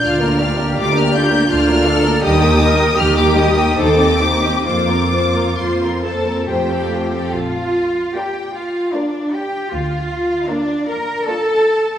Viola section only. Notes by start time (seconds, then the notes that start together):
0.04 D4 F4
0.22 A#3 D4
0.41 D4 F4
0.59 A#3 D4
0.76 D4 F4
0.95 A#3 D4
1.15 D4 F4
1.32 A#3 D4
1.51 D4 F4
1.69 A#3 D4
1.88 D4 F4
2.05 A#3 D4
2.23 G3 G4
2.40 A#3 D#4
2.59 G3 G4
2.77 A#3 D#4
2.97 G3 G4
3.16 A#3 D#4
3.35 G3 G4
3.55 A#3 D#4
3.77 D#4 G4
3.97 C4 D#4
4.20 D#4 G4
4.43 C4 D#4
4.65 A#3 F4
4.89 A#3 C4
5.13 A#3 F4
5.36 A#3 C4
5.59 A#3 F4
5.82 A#3 C4
6.04 A#3 F4
6.26 A#3 C4
6.48 A3 F4
6.69 C4 A4
6.91 A3 F4
7.12 C4 A4
8.16 A#3 F4
8.94 A#3 F4
10.49 A#3 F4
11.27 A#3 F4